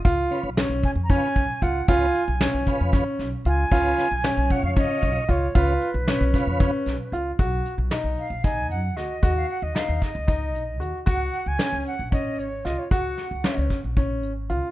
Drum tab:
HH |xxxxxxx|xxxxxxx|xxxxxxx|xxxxxxx|
SD |--o----|--oooo-|-oo----|--oo-o-|
BD |o--oooo|o--oo--|o--oooo|o--oo--|

HH |xxxxxxx|xxxxxxx|xxxxxxx|xxxxxxx|
SD |--o---o|--oo---|--o---o|-ooo---|
BD |o---o--|o--oo--|o---o--|o--oo--|